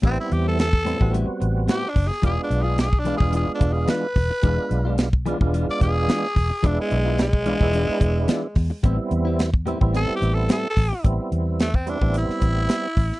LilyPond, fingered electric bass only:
\new Staff \with { instrumentName = "Fingered electric bass" } { \clef bass \time 4/4 \key e \minor \tempo 4 = 109 a,,16 r16 e,4~ e,16 a,,8 r16 a,,8 r8 fis,,16 r16 | e,,16 r16 b,,4~ b,,16 e,,8 r16 e,,8 r8 e,,16 r16 | e,,16 r16 b,,4~ b,,16 e,,8 r16 e,,8 r8 e,,16 r16 | e,,16 r16 b,,4~ b,,16 e,,8 r16 e,,8 r8 e,16 r16 |
a,,16 r16 e,4~ e,16 a,,8 r16 a,,8 r8 a,,16 r16 | a,,16 r16 e,4~ e,16 a,,8 r16 a,,8 r8 a,,16 r16 | }